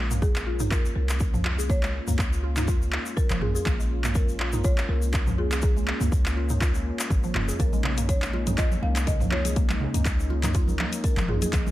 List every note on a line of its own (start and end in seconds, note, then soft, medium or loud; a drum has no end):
0.00 0.89 A#1 loud
0.00 11.71 G#3 medium
0.00 11.71 A#3 medium
0.00 11.71 C#4 medium
0.00 7.58 F4 medium
0.00 0.24 A#4 medium
0.11 0.21 A#3 medium
0.11 mid tom medium
0.11 shaker medium
0.22 0.73 G#4 medium
0.22 kick loud
0.22 shaker medium
0.36 clap medium
0.36 shaker soft
0.47 0.59 F4 medium
0.60 0.70 D#4 medium
0.60 mid tom medium
0.60 shaker medium
0.71 0.83 F4 medium
0.71 0.94 A#4 medium
0.71 kick loud
0.71 clap medium
0.71 shaker medium
0.85 shaker soft
0.96 2.00 C2 medium
0.96 1.41 A#4 medium
1.09 clap medium
1.09 shaker medium
1.20 kick loud
1.20 shaker medium
1.34 1.44 F3 loud
1.34 mid tom medium
1.34 shaker soft
1.45 1.58 F4 medium
1.45 clap medium
1.58 1.68 G#4 medium
1.58 shaker medium
1.70 1.82 A#3 medium
1.70 3.22 C#5 loud
1.70 kick loud
1.70 shaker medium
1.83 1.93 G#3 medium
1.83 clap medium
1.83 shaker soft
2.08 2.98 C#2 medium
2.08 2.18 A#3 medium
2.08 mid tom medium
2.08 shaker medium
2.19 kick loud
2.19 clap medium
2.19 shaker medium
2.33 shaker soft
2.43 2.56 F4 medium
2.56 2.67 D#4 medium
2.56 clap medium
2.56 mid tom medium
2.56 shaker medium
2.68 2.80 F4 medium
2.68 kick loud
2.68 shaker medium
2.82 shaker soft
2.93 clap medium
3.06 shaker medium
3.17 3.42 A#4 loud
3.17 kick loud
3.17 shaker medium
3.30 3.43 F1 loud
3.30 3.41 F3 loud
3.30 clap medium
3.30 shaker soft
3.41 3.58 A#1 medium
3.41 3.54 F4 medium
3.41 4.17 G#4 medium
3.41 mid tom medium
3.55 3.65 G#4 medium
3.55 shaker medium
3.66 4.83 A#1 loud
3.66 3.78 A#3 medium
3.66 kick loud
3.66 clap medium
3.66 shaker medium
3.80 3.90 G#3 medium
3.80 shaker soft
4.04 4.14 A#3 medium
4.04 clap medium
4.04 mid tom medium
4.04 shaker medium
4.15 4.61 A#4 medium
4.15 kick loud
4.15 shaker medium
4.29 shaker soft
4.40 4.53 F4 medium
4.40 clap medium
4.52 4.64 D#4 medium
4.52 mid tom medium
4.52 shaker medium
4.64 4.77 F4 medium
4.64 4.76 C#5 loud
4.64 kick loud
4.64 shaker medium
4.78 clap medium
4.78 shaker soft
4.89 5.93 C2 loud
4.89 5.35 A#4 medium
5.02 shaker medium
5.13 kick loud
5.13 clap medium
5.13 shaker medium
5.27 5.38 F3 medium
5.27 mid tom medium
5.27 shaker soft
5.38 5.51 F4 medium
5.38 5.62 G#4 medium
5.52 5.62 G#4 medium
5.52 clap medium
5.52 shaker medium
5.62 5.75 A#3 medium
5.62 6.33 G#4 medium
5.62 kick loud
5.62 shaker medium
5.77 5.87 G#3 medium
5.77 shaker soft
5.88 clap medium
6.01 6.92 C#2 medium
6.01 6.11 A#3 medium
6.01 mid tom medium
6.01 shaker medium
6.12 kick loud
6.12 shaker medium
6.26 clap medium
6.26 shaker soft
6.37 6.50 F4 medium
6.49 6.60 D#4 medium
6.49 mid tom medium
6.49 shaker medium
6.61 6.73 F4 medium
6.61 kick loud
6.61 clap medium
6.61 shaker medium
6.75 shaker soft
6.99 clap medium
6.99 shaker medium
7.10 7.27 G#1 medium
7.10 kick loud
7.10 shaker medium
7.23 7.34 F3 loud
7.23 shaker soft
7.35 7.52 F1 loud
7.35 7.48 F4 medium
7.35 clap medium
7.35 mid tom medium
7.48 7.59 G#4 medium
7.48 shaker medium
7.60 8.76 A#1 loud
7.60 7.72 A#3 medium
7.60 11.71 D#4 medium
7.60 8.11 A#4 medium
7.60 kick loud
7.60 closed hi-hat soft
7.60 shaker medium
7.73 7.83 G#3 medium
7.73 muted conga medium
7.73 high conga medium
7.73 shaker soft
7.83 clap medium
7.83 low conga medium
7.98 8.08 A#3 medium
7.98 closed hi-hat medium
7.98 mid tom medium
7.98 shaker medium
8.09 8.55 C#5 medium
8.09 kick loud
8.09 closed hi-hat soft
8.09 muted conga soft
8.09 shaker medium
8.22 clap medium
8.22 shaker soft
8.33 8.46 F4 medium
8.33 muted conga soft
8.47 8.57 D#4 medium
8.47 closed hi-hat soft
8.47 mid tom medium
8.47 high conga loud
8.47 shaker medium
8.58 8.70 F4 medium
8.58 8.81 D#5 loud
8.58 kick loud
8.58 clap medium
8.58 closed hi-hat soft
8.58 muted conga soft
8.58 shaker medium
8.72 high conga loud
8.72 shaker soft
8.83 9.87 C2 loud
8.83 9.08 F5 loud
8.83 muted conga medium
8.96 clap medium
8.96 closed hi-hat medium
8.96 shaker medium
9.07 9.18 D#5 loud
9.07 kick loud
9.07 closed hi-hat soft
9.07 low conga medium
9.07 shaker medium
9.20 9.31 F3 loud
9.20 mid tom medium
9.20 muted conga soft
9.20 high conga medium
9.20 shaker soft
9.32 9.44 F4 medium
9.32 10.26 C#5 medium
9.32 clap medium
9.45 9.55 G#4 medium
9.45 closed hi-hat medium
9.45 muted conga medium
9.45 shaker medium
9.56 9.68 A#3 medium
9.56 kick loud
9.56 closed hi-hat soft
9.56 shaker medium
9.69 9.80 G#3 medium
9.69 clap medium
9.69 muted conga soft
9.69 high conga medium
9.69 shaker soft
9.81 low conga loud
9.94 10.85 C#2 medium
9.94 10.04 A#3 medium
9.94 closed hi-hat medium
9.94 mid tom medium
9.94 shaker medium
10.05 kick loud
10.05 clap medium
10.05 closed hi-hat soft
10.05 muted conga soft
10.05 shaker medium
10.20 shaker soft
10.30 10.43 F4 medium
10.30 muted conga medium
10.43 10.54 D#4 medium
10.43 clap medium
10.43 closed hi-hat soft
10.43 mid tom medium
10.43 high conga medium
10.43 shaker medium
10.54 10.67 F4 medium
10.54 kick loud
10.54 closed hi-hat soft
10.54 muted conga soft
10.54 shaker medium
10.68 high conga loud
10.68 shaker soft
10.79 clap medium
10.79 muted conga soft
10.79 high conga loud
10.93 closed hi-hat medium
10.93 shaker medium
11.04 11.29 A#4 medium
11.04 kick medium
11.04 closed hi-hat soft
11.04 shaker medium
11.17 11.30 F1 loud
11.17 11.28 F3 loud
11.17 clap medium
11.17 muted conga soft
11.17 high conga medium
11.17 shaker soft
11.28 11.45 A#1 medium
11.28 11.41 F4 medium
11.28 11.71 G#4 medium
11.28 mid tom medium
11.42 11.52 G#4 medium
11.42 closed hi-hat medium
11.42 muted conga soft
11.42 high conga medium
11.42 shaker medium
11.53 11.71 A#1 loud
11.53 11.65 A#3 medium
11.53 kick loud
11.53 clap medium
11.53 closed hi-hat soft
11.53 shaker medium
11.66 11.71 G#3 medium
11.66 muted conga medium
11.66 high conga medium
11.66 shaker soft